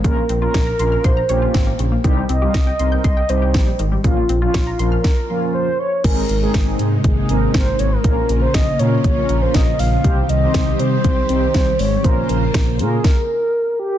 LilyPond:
<<
  \new Staff \with { instrumentName = "Soft synth lead" } { \time 4/4 \key bes \dorian \tempo 4 = 120 bes'8. bes'4~ bes'16 c''4. r8 | r8 ees''8 ees''4 ees''8 c''4 r8 | f'8. f'8. bes'4. c''8 des''8 | bes'4. r8 aes'4 c''8 des''16 bes'16~ |
bes'8. c''16 ees''8 des''8 des''8. c''16 ees''8 f''8~ | f''8 ees''8 ees''8 c''4. c''8 des''8 | c''8 bes'4 aes'8 bes'4. g'8 | }
  \new Staff \with { instrumentName = "Synth pluck" } { \time 4/4 \key bes \dorian des16 bes16 c'16 f'16 des''16 bes''16 c'''16 f'''16 c'''16 bes''16 des''16 f'16 c'16 bes16 des16 bes16 | ees16 g16 c'16 g'16 ees''16 g''16 c'''16 g'''16 c'''16 g''16 ees''16 g'16 c'16 g16 ees16 g16 | des16 bes16 c'16 f'16 des''16 bes''16 c'''16 f'''16 r2 | r1 |
r1 | r1 | r1 | }
  \new Staff \with { instrumentName = "Analog polysynth" } { \time 4/4 \key bes \dorian <bes des' f' bes'>8 r16 <bes des' f' bes'>16 r16 <f' bes'>16 <bes des' f' bes'>8 r8 <bes des' f' g'>8. r8. | <g c' ees' g'>8 r16 <g c' ees' f'>16 r16 <ees' g'>16 <g c' ees' bes'>8 r8 <g c' ees' g'>8. r8. | <f bes des' f'>8 r16 <f bes des' f'>16 r16 <des' ees'>16 <f bes des' f'>8 r8 <f bes des' f'>8. r8. | <aes c' ees' aes'>8 r16 <aes c' ees' aes'>4 r8. <aes c' ees' bes'>8. r8. |
<bes des' f' bes'>8. r8. <bes des' f' bes'>8 r16 <bes des' f' bes'>4 r8. | <c' ees' g' c''>8 r16 <c' ees' g' c''>4 r8. <c' ees' g' c''>8. r8. | <bes des' f' bes'>8. r8. <bes des' f' bes'>8 r2 | }
  \new Staff \with { instrumentName = "String machine" } { \time 4/4 \key bes \dorian r1 | r1 | r1 | <c aes bes ees'>1 |
<des des' f'>1 | <ees g c' g'>1 | <des bes f' c''>2 r2 | }
  \new Staff \with { instrumentName = "Analog synth bass" } { \clef bass \time 4/4 \key bes \dorian bes,,8 bes,,8 bes,,8 bes,,8 bes,,8 bes,,8 aes,,8 bes,,8 | c,8 c,8 c,8 c,8 c,8 c,8 bes,,8 aes,,8 | bes,,8 bes,,8 bes,,8 bes,,8 r2 | aes,,8 aes,,8 aes,,8 aes,8 aes,,8 aes,,8 aes,,8 aes,,8 |
bes,,8 bes,,8 bes,,8 bes,8 bes,,8 bes,,8 bes,,8 bes,,8 | c,8 c,8 c,8 c8 c,8 c,8 c,8 aes,,8 | bes,,8 bes,,8 bes,,8 bes,8 r2 | }
  \new DrumStaff \with { instrumentName = "Drums" } \drummode { \time 4/4 <hh bd>8 hh8 <hh bd sn>8 hh8 <hh bd>8 hh8 <hh bd sn>8 hh8 | <hh bd>8 hh8 <hh bd sn>8 hh8 <hh bd>8 hh8 <hh bd sn>8 hh8 | <hh bd>8 hh8 <hh bd sn>8 hh8 <bd sn>4 r4 | <cymc hh bd>8 hh8 <hh bd sn>8 hh8 <hh bd>8 hh8 <hh bd sn>8 hh8 |
<hh bd>8 hh8 <hh bd sn>8 hh8 <hh bd>8 hh8 <hh bd sn>8 hho8 | <hh bd>8 hh8 <hh bd sn>8 hh8 <hh bd>8 hh8 <hh bd sn>8 hho8 | <hh bd>8 hh8 <hh bd sn>8 hh8 <bd sn>4 r4 | }
>>